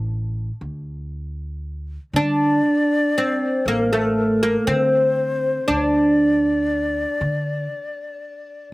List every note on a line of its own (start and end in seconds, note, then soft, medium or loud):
0.00 0.49 A1 medium
0.61 1.96 D2 medium
2.13 2.58 D3 medium
2.13 3.12 D4 medium
2.13 3.67 D5 medium
3.18 3.67 C4 medium
3.66 4.56 A1 medium
3.66 3.92 A#3 medium
3.66 3.83 A4 medium
3.83 4.69 A#4 medium
3.93 4.42 A3 medium
4.43 4.67 A#3 medium
4.67 5.57 D3 medium
4.67 5.72 C4 medium
4.67 5.71 C5 medium
5.68 7.04 D2 medium
5.68 8.68 D4 medium
5.68 8.73 D5 medium
7.21 7.66 D3 medium